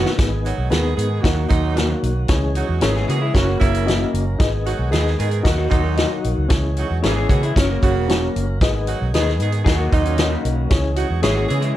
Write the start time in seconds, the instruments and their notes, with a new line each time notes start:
Already playing: clean electric guitar D#3 B3, tonewheel organ D#3 F#3 B3 F#4
0.06 snare
0.17 fingered electric bass G#1, tonewheel organ D#3 B3 G#4, reed electric piano B3 D#4 G#4 B4, kick, snare, closed hi-hat
0.22 tonewheel organ G#3
0.45 saxophone section F#3 D#4 F#4, closed hi-hat
0.58 fingered electric bass B1
0.70 fingered electric bass D#2, saxophone section D#3 B3 G#4, reed electric piano B3 D#4 G#4 B4, snare, closed hi-hat
0.96 fingered electric bass G#2, saxophone section D#3 B3 G#4, closed hi-hat
1.21 fingered electric bass D#2, saxophone section D#3 A#3 F#4, reed electric piano A#3 D#4 F#4 A#4, kick, closed hi-hat
1.25 tonewheel organ F#3 A#3 F#4, snare
1.48 fingered electric bass D#2, saxophone section A#2 F#3 D#4, kick, closed hi-hat
1.75 reed electric piano A#3 D#4 F#4 A#4, snare, closed hi-hat
2.03 fingered electric bass B1, closed hi-hat
2.28 fingered electric bass C#2, tonewheel organ E3 G#3 C#4 G#4, reed electric piano C#4 E4 G#4 C#5, kick, snare, closed hi-hat
2.55 saxophone section F#3 D#4 F#4, closed hi-hat
2.69 fingered electric bass E2
2.81 fingered electric bass G#1, saxophone section E3 C#4 G#4, reed electric piano C#4 E4 G#4 C#5, clean electric guitar C#4 A#4, snare, closed hi-hat
2.96 clean electric guitar B3 G#4, snare
3.08 fingered electric bass C#3, saxophone section E3 C#4 G#4, clean electric guitar A#3 F#4, closed hi-hat
3.22 clean electric guitar G#3 E4
3.34 fingered electric bass F#1, saxophone section C#3 A#3 F#4, clean electric guitar E3 C#4, tonewheel organ F#3 A#3 A#4, reed electric piano C#4 F#4 A#4 C#5, kick, snare, closed hi-hat
3.49 clean electric guitar C#3 A#3
3.59 fingered electric bass F#1, saxophone section C#3 A#3 E4, kick, closed hi-hat
3.75 closed hi-hat
3.86 reed electric piano C#4 F#4 A#4 D#5, snare, closed hi-hat
4.14 fingered electric bass F#1, closed hi-hat
4.39 fingered electric bass G#1, tonewheel organ D#3 G#3 B3 G#4, reed electric piano D#4 G#4 B4 D#5, kick, snare, closed hi-hat
4.65 saxophone section F#3 D#4 F#4, closed hi-hat
4.79 fingered electric bass B1
4.91 fingered electric bass D#2, saxophone section D#3 B3 G#4, reed electric piano D#4 G#4 B4 D#5, snare, closed hi-hat
5.07 snare
5.18 fingered electric bass G#2, saxophone section D#3 B3 G#4, closed hi-hat
5.31 closed hi-hat
5.43 fingered electric bass D#2, saxophone section D#3 A#3 F#4, tonewheel organ D#3 F#3 A#3 F#4, reed electric piano D#4 F#4 A#4 D#5, kick, snare, closed hi-hat
5.58 clean electric guitar F#3 D#4
5.69 fingered electric bass D#2, saxophone section A#2 F#3 D#4, clean electric guitar A#3 F#4, kick, closed hi-hat
5.84 clean electric guitar F#3 D#4
5.97 reed electric piano D#4 F#4 A#4 D#5, snare, closed hi-hat
6.24 fingered electric bass A#1, closed hi-hat
6.38 fingered electric bass C#2
6.48 fingered electric bass C#2, tonewheel organ E3 G#3 C#4 G#4, reed electric piano C#4 E4 G#4 C#5, kick, snare, closed hi-hat
6.77 saxophone section F#3 D#4 F#4, closed hi-hat
6.90 fingered electric bass E2
7.03 fingered electric bass G#1, saxophone section E3 C#4 G#4, reed electric piano C#4 E4 G#4 C#5, clean electric guitar C#4 A#4, snare, closed hi-hat
7.16 clean electric guitar B3 G#4
7.29 fingered electric bass C#3, saxophone section E3 C#4 G#4, clean electric guitar A#3 F#4, kick, closed hi-hat
7.43 clean electric guitar G#3 E4, closed hi-hat
7.56 fingered electric bass F#1, clean electric guitar E3 C#4, tonewheel organ F#3 A#3 A#4, saxophone section F#3 C#4 A#4, reed electric piano C#4 F#4 A#4 C#5, kick, snare, closed hi-hat
7.70 clean electric guitar C#3 A#3
7.83 fingered electric bass F#1, saxophone section C#3 A#3 F#4, kick, closed hi-hat
7.97 fingered electric bass E1
8.08 reed electric piano C#4 F#4 A#4 C#5, snare, closed hi-hat
8.36 fingered electric bass F#1, closed hi-hat
8.61 fingered electric bass G#1, tonewheel organ D#3 G#3 B3 G#4, reed electric piano D#4 G#4 B4 D#5, kick, snare, closed hi-hat
8.87 saxophone section F#3 D#4 F#4, closed hi-hat
9.02 fingered electric bass B1
9.14 fingered electric bass D#2, saxophone section D#3 B3 G#4, reed electric piano D#4 G#4 B4 D#5, snare, closed hi-hat
9.28 snare
9.40 fingered electric bass G#2, saxophone section D#3 B3 G#4, closed hi-hat
9.52 closed hi-hat
9.64 fingered electric bass D#2, saxophone section D#3 A#3 F#4, tonewheel organ D#3 F#3 A#3 F#4, reed electric piano D#4 F#4 A#4 D#5, clean electric guitar G#4, kick, snare, closed hi-hat
9.78 clean electric guitar A#3 F#4
9.90 fingered electric bass D#2, saxophone section A#2 F#3 D#4, clean electric guitar F#3 D#4, kick, closed hi-hat
10.04 clean electric guitar C#4, closed hi-hat
10.18 reed electric piano D#4 F#4 A#4 D#5, snare, closed hi-hat
10.31 clean electric guitar C#3 A#3
10.45 fingered electric bass B1, closed hi-hat
10.70 fingered electric bass C#2, tonewheel organ E3 G#3 C#4 G#4, reed electric piano C#4 E4 G#4 C#5, kick, snare, closed hi-hat
10.96 saxophone section F#3 D#4 F#4, closed hi-hat
11.10 fingered electric bass E2
11.22 fingered electric bass G#1, saxophone section E3 C#4 G#4, clean electric guitar G#3 E4, reed electric piano C#4 E4 G#4 C#5, snare, closed hi-hat
11.35 clean electric guitar A#3 F#4
11.48 fingered electric bass C#3, saxophone section E3 C#4 G#4, clean electric guitar B3 G#4, closed hi-hat
11.61 clean electric guitar G#3 E4, closed hi-hat